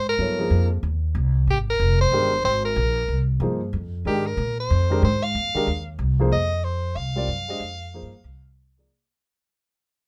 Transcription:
Already playing: upright bass G#2
0.09 soprano saxophone A#4
0.18 upright bass G2, grand piano F#3 B3 E4 A4 C#5
0.39 grand piano F3 A#3 D#4 G#4 C5
0.50 upright bass F2
0.83 upright bass D#2
1.15 upright bass C2
1.47 upright bass G#1, soprano saxophone G4
1.70 soprano saxophone A#4
1.80 upright bass F1
2.01 soprano saxophone C5
2.12 upright bass G1, grand piano D#3 G#3 D4 G4 A#4
2.44 upright bass G#1, soprano saxophone C5
2.65 soprano saxophone A#4
2.76 upright bass A#1
3.08 upright bass C2
3.40 upright bass G2, grand piano F3 A#3 D#4 G#4 C5
3.73 upright bass F2
4.05 upright bass G#2, grand piano D#3 G#3 D4 G4 A#4, soprano saxophone G4
4.27 soprano saxophone A#4
4.37 upright bass A#2
4.60 soprano saxophone C5
4.70 upright bass F2
4.90 grand piano D#3 G#3 D4 G4 A#4
5.03 upright bass G#2, soprano saxophone C5
5.24 soprano saxophone F5
5.35 upright bass E2
5.55 grand piano D#3 G#3 D4 G4 A#4, muted upright bass stroke
5.67 upright bass D#2
5.99 upright bass C2
6.19 grand piano F3 A#3 D#4 G#4 C5
6.31 upright bass F2, soprano saxophone D#5
6.64 soprano saxophone C5
6.96 upright bass C2, soprano saxophone F5
7.16 grand piano G3 C4 F4 A#4 D5
7.28 upright bass F#2
7.48 grand piano G#3 D4 G4 C5 D#5
7.60 upright bass F2
7.94 grand piano F3 A#3 D#4 G#4 C5
8.02 upright bass G2
8.13 upright bass F#2
8.24 upright bass C2
8.77 grand piano F3 A#3 D#4 G#4 D5

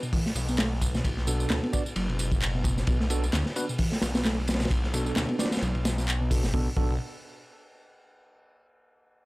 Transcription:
0.03 reed electric piano B2, tambourine
0.13 reed electric piano E3, kick, open hi-hat, tambourine
0.26 reed electric piano A3, snare
0.35 detuned saw bass B1, ride, tambourine
0.48 reed electric piano B3, tambourine
0.58 reed electric piano A3, snare, clap, ride, tambourine
0.81 kick, ride, tambourine
0.94 reed electric piano B2, snare, tambourine
1.04 detuned saw bass B1, kick, ride, tambourine
1.17 snare
1.27 reed electric piano B2, tine electric piano B3 D4 F#4 A4, ride, tambourine
1.40 tambourine
1.50 detuned saw bass D2, snare, clap, ride, tambourine
1.63 reed electric piano B3, ride
1.73 tine electric piano B3 D4 F#4 D5, kick, ride, tambourine
1.86 tambourine
1.96 detuned saw bass F#1, reed electric piano F#3, ride, tambourine
2.09 reed electric piano B2, ride
2.19 ride, tambourine
2.32 kick, tambourine
2.42 clap, ride, tambourine
2.55 reed electric piano B2
2.64 kick, ride, tambourine
2.78 snare, tambourine
2.87 detuned saw bass B1, reed electric piano B2, kick, ride, tambourine
3.00 reed electric piano A3, snare
3.10 tine electric piano B3 D4 F#4 A4, ride, tambourine
3.24 ride, tambourine
3.33 detuned saw bass D2, reed electric piano D3, snare, clap, ride, tambourine
3.46 snare
3.56 tine electric piano B3 D4 F#4 B4, ride, tambourine
3.69 reed electric piano B2, tambourine
3.79 reed electric piano E3, kick, open hi-hat, tambourine
3.91 reed electric piano A3, snare
4.02 detuned saw bass B1, snare, ride, tambourine
4.15 reed electric piano B3, snare, ride, tambourine
4.25 reed electric piano A3, snare, clap, ride, tambourine
4.47 snare, ride, tambourine
4.54 snare, ride
4.60 reed electric piano B2, snare, ride, tambourine
4.65 snare, ride
4.70 detuned saw bass B1, kick, ride, tambourine
4.84 snare
4.94 reed electric piano B2, tine electric piano B3 D4 F#4 A4, ride, tambourine
5.06 tambourine
5.16 detuned saw bass D2, snare, clap, ride, tambourine
5.29 reed electric piano B3, ride
5.39 tine electric piano B3 D4 F#4 D5, snare, ride, tambourine
5.45 snare, ride
5.51 snare, ride, tambourine
5.57 snare, ride
5.62 detuned saw bass B1, reed electric piano F#3, ride, tambourine
5.75 reed electric piano B2, ride
5.85 snare, ride, tambourine
5.98 snare, tambourine
6.08 clap, ride, tambourine
6.21 reed electric piano B2
6.31 tine electric piano B3 D4 F#4 A4, kick, open hi-hat, tambourine
6.44 detuned saw bass F#1, snare, tambourine
6.54 detuned saw bass B1, reed electric piano B2, tine electric piano B3 D4 F#4 A4, kick
6.77 detuned saw bass B1, reed electric piano B2, tine electric piano B3 D4 F#4 A4, kick

